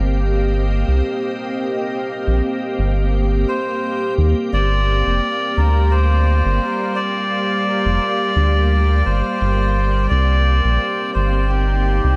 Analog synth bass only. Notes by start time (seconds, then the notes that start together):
0.00 G1
0.88 C2
2.27 A#1
2.79 G1
4.18 D#2
4.53 G1
5.07 F1
5.57 D2
6.45 G1
7.85 F1
8.36 D2
9.06 G1
9.41 G1
10.11 C2
10.65 A#1
11.16 G1
12.04 C2